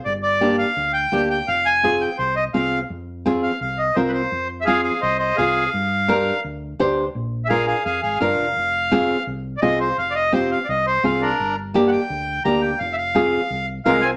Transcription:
<<
  \new Staff \with { instrumentName = "Accordion" } { \time 4/4 \key f \dorian \tempo 4 = 170 << { d''8 d''4 f''4 g''4 g''8 | f''8 aes''4 g''8 c''8 ees''8 f''8. r16 | r4. f''8 f''8 ees''8 c''8 <b' c''>8~ | <b' c''>8 r8 <e'' f''>8 f''8 ees''8 ees''8 f''4~ |
f''2 r2 | r4 <e'' f''>8 f''8 f''8 f''8 f''4~ | f''2 r4 <d'' ees''>8 c''8 | f''8 <d'' ees''>8 c''8 f''8 <d'' ees''>8 c''8 f''8 bes'8~ |
bes'8 r4 <ges'' g''>4. bes''8 g''8 | f''8 <e'' f''>2 r8 f''8 aes''8 | } \\ { r1 | r1 | r1 | r4 aes'8 aes'8 c''8 c''8 aes'4 |
r1 | r4 aes'8 aes'8 aes'8 aes'8 r4 | r1 | r2. r8 d'8~ |
d'8 r2. r8 | r1 | } >> }
  \new Staff \with { instrumentName = "Nylon-string guitar" } { \time 4/4 \key f \dorian r4 <bes d' g'>8 r4. <bes d' g'>8 r8 | r4 <c' f' aes'>8 r4. <c' f' aes'>8 r8 | r4 <c' f' aes'>8 r4. <c' f' bes'>8 r8 | r4 <c' f' aes'>8 r4. <c' f' aes'>8 r8 |
r4 <d' g' bes'>8 r4. <d' g' c''>8 r8 | r4 <d' f' bes'>8 r4. <d' f' bes'>8 r8 | r4 <c' f' aes'>8 r4. <c' f' aes'>8 r8 | r4 <c' f' g'>8 r4. <c' f' aes'>8 r8 |
r4 <bes d' g'>8 r4. <bes d' g'>8 r8 | r4 <c' f' aes'>8 r4. <c' f' bes'>8 r8 | }
  \new Staff \with { instrumentName = "Trombone" } { \time 4/4 \key f \dorian r1 | r1 | r1 | r1 |
r1 | r1 | r1 | r1 |
r1 | r2. aes8 c'8 | }
  \new Staff \with { instrumentName = "Fingered electric bass" } { \clef bass \time 4/4 \key f \dorian g,,2 d,4 d,4 | f,,2 c,4 c,4 | f,2 c,4 c,4 | f,2 c,4 c,4 |
g,2 d,4 d,4 | bes,,2 f,8 aes,,8 g,,8 f,,8 | f,,2 c,4 c,4 | f,,2 c,4 c,4 |
g,,2 d,4 d,4 | f,,2 c,4 c,4 | }
>>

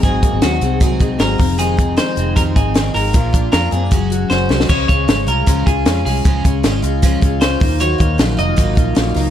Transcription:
<<
  \new Staff \with { instrumentName = "Clean electric guitar" } { \time 4/4 \key des \major \tempo 4 = 154 aes'4 ges'4 r4 bes'4 | aes'4 c''4 bes'8 aes'4 bes'8~ | bes'4 bes'8 aes'4 r8 c''4 | des''8 des''4 bes'4 aes'4 aes'8~ |
aes'4. r4. c''4 | des''4 r8 ees''2~ ees''8 | }
  \new Staff \with { instrumentName = "Clean electric guitar" } { \time 4/4 \key des \major <aes, ges c' ees'>8 bes16 c'16 des'16 ees'16 c'8 ges8 ees'8 c'8 f,8 | <f, ees'>8 aes8 ees'8 aes8 ees8 ees'8 aes8 ees8 | <bes, f'>8 d'8 f'8 c'16 d'16 ges8 ges'8 des'8 aes8 | des8 des'8 aes8 f'8 des'8 f'8 des'8 aes8 |
des8 des'8 aes8 f'8 des'8 f'8 des'8 ees8 | ees8 bes8 ges8 ees'16 f'16 bes8 f'8 bes8 ges8 | }
  \new Staff \with { instrumentName = "Twelve-string acoustic guitar" } { \time 4/4 \key des \major <aes, ees ges aes c' aes'>8 <ges aes c' aes'>8 <ges aes c' aes'>8 <ges aes c' aes'>8 <aes, ees ges aes c' aes'>8 <ges aes c' aes'>8 <ges aes c' aes'>8 <ees aes c' f'>8 | <f, c ees aes c' f'>8 <ees aes c' f'>8 <ees aes c' f'>8 <ees aes c' f'>8 <f, c ees aes c' f'>8 <ees aes c' f'>8 <ees aes c' f'>8 <ees aes c' f'>8 | <bes, f bes d' f'>8 <bes d' f'>8 <f bes d' f'>8 <bes d' f'>8 <ges aes des' ges'>8 <aes des' ges'>8 <ges aes des' ges'>8 <aes des' ges'>8 | <des f aes des' f'>8 <aes des' f'>8 <f aes des' f'>8 <aes des' f'>8 <des f aes des' f'>8 <aes des' f'>8 <f aes des' f'>8 <aes des' f'>8 |
<des f aes des' f'>8 <aes des' f'>8 <f aes des' f'>8 <aes des' f'>8 <des f aes des' f'>8 <aes des' f'>8 <f aes des' f'>8 <bes ees' f'>8 | <ees ges bes ees' f'>8 <bes ees' f'>8 <ges bes ees' f'>8 <bes ees' f'>8 <ees ges bes ees' f'>8 <bes ees' f'>8 <ges bes ees' f'>8 <bes ees' f'>8 | }
  \new Staff \with { instrumentName = "Fingered electric bass" } { \clef bass \time 4/4 \key des \major aes,,8 r16 aes,,16 ees,8 c,4. aes,,8 f,,8~ | f,,4~ f,,16 r16 f,,8 f,8 aes,,4 aes,,8 | bes,,4 f,8 ges,8 ges,,4 ges,,8 c,8 | des,8 des,8 aes,,8 c,8 des,8 des,8 f,8 c,8 |
des,8 des,8 aes,,8 des,4 des,4 ees,8~ | ees,8 ees,8 bes,,8 f,,8 aes,,8 bes,,8 bes,,8 des,8 | }
  \new DrumStaff \with { instrumentName = "Drums" } \drummode { \time 4/4 <hh bd>8 <hh bd>8 <hh sn>8 hh8 <hh bd>8 <hh bd>8 <hh sn>8 <hho bd>8 | hh8 <hh bd>8 <hh sn>8 hh8 <hh bd>8 <hh bd>8 <hh sn>8 hho8 | <hh bd>8 <hh bd>8 <hh sn>8 hh8 <hh bd>8 hh8 sn8 sn16 sn16 | <cymc bd>8 <hh bd>8 <hh sn>8 hh8 <hh bd>8 <hh bd>8 <hh sn>8 hho8 |
<hh bd>8 <hh bd>8 <hh sn>8 hh8 <hh bd>8 <hh bd>8 <hh sn>8 <hho bd>8 | hh8 <hh bd>8 <hh sn>8 hh8 <hh bd>8 <hh bd>8 <hh sn>8 hho8 | }
>>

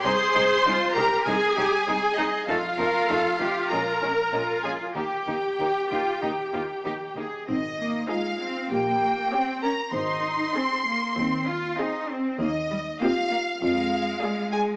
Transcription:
<<
  \new Staff \with { instrumentName = "Violin section" } { \time 4/4 \key aes \major \tempo 4 = 98 c'''4. bes''8 aes''4. ees''8 | f''2 bes''4. aes''8 | g''2.~ g''8 r8 | r4 c''4 r4 des''4 |
r4 ees''4 r4 ees''4 | r4 ees''4 r4 d''4 | }
  \new Staff \with { instrumentName = "Viola section" } { \time 4/4 \key aes \major c''4. bes'8 aes'4. ees'8 | f'2 bes'4. aes'8 | g'2.~ g'8 r8 | r4 <ees' aes'>4 r4 <des' g'>4 |
r4 <c' aes'>4 r4 <c' aes'>4 | r4 <bes g'>4 r4 <aes aes'>4 | }
  \new Staff \with { instrumentName = "Marimba" } { \time 4/4 \key aes \major r1 | r1 | r1 | ees'4 f'4 g'4. bes'8 |
c''2.~ c''8 r8 | ees'4 f'4 f'4. aes'8 | }
  \new Staff \with { instrumentName = "Cello section" } { \time 4/4 \key aes \major aes'4 f'8 g'8 aes'8 g'8 aes'4 | a'8 bes'8 a'8 g'8 f'8 des'8 f'4 | g'4 g'8 f'8 ees'8 f'8 g'8 aes'8 | c'8 bes8 aes8 c'8 bes4 c'8 des'8 |
ees'4 c'8 bes8 c'8 f'8 ees'8 c'8 | bes8 g8 c'8 bes8 aes2 | }
  \new Staff \with { instrumentName = "Violin section" } { \time 4/4 \key aes \major <aes ees'>8 <aes ees'>8 <aes ees'>8 <aes ees'>8 <aes ees'>8 <aes ees'>8 <aes ees'>8 <aes ees'>8 | <a ees'>8 <a ees'>8 <a ees'>8 <a ees'>8 <aes des'>8 <aes des'>8 <aes des'>8 <aes des'>8 | <bes ees'>8 <bes ees'>8 <bes ees'>8 <bes ees'>8 <bes ees'>8 <bes ees'>8 <bes ees'>8 <bes ees'>8 | ees''4 f''4 g''4. bes''8 |
c'''2.~ c'''8 r8 | ees''4 f''4 f''4. aes''8 | }
  \new Staff \with { instrumentName = "Double bass section" } { \clef bass \time 4/4 \key aes \major c,8 c,8 c,8 c,8 c,8 c,8 c,8 c,8 | f,8 f,8 f,8 f,8 bes,,8 bes,,8 bes,,8 bes,,8 | ees,8 ees,8 ees,8 ees,8 ees,8 ees,8 ees,8 ees,8 | aes,,4 r4 bes,,4 r4 |
aes,,4 r4 ees,4 r4 | ees,4 r4 f,4 r4 | }
>>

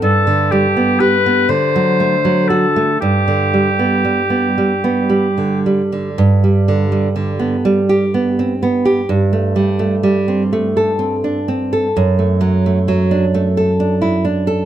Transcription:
<<
  \new Staff \with { instrumentName = "Oboe" } { \time 6/8 \key g \major \tempo 4. = 42 a'8 g'8 b'8 c''4 a'8 | g'2~ g'8 r8 | r2. | r2. |
r2. | }
  \new Staff \with { instrumentName = "Nylon-string guitar" } { \time 6/8 \key g \major g,16 d16 g16 b16 g'16 b16 d16 fis16 a16 fis16 fis'16 a16 | g,16 d16 g16 b16 g16 b16 g16 b16 g16 d16 g16 d16 | g,16 g16 d16 g16 d16 b16 g16 g'16 b16 c'16 b16 g'16 | g,16 a16 g16 a16 g16 c'16 a16 a'16 c'16 d'16 c'16 a'16 |
fis,16 a16 fis16 a16 fis16 d'16 a16 a'16 d'16 e'16 d'16 a'16 | }
>>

